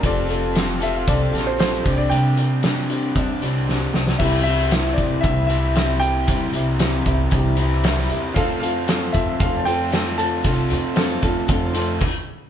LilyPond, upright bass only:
\new Staff \with { instrumentName = "Upright bass" } { \clef bass \time 4/4 \key c \mixolydian \tempo 4 = 115 f,,2 c,8 bes,,4 c,8 | c2 g,16 r16 c,4 c,8 | c,4. c,8 c,2 | g,8 c,4 c,8 c,4. e,8 |
f,4. f,8 f,2 | c,8 f,4 f,8 f,4 r4 | }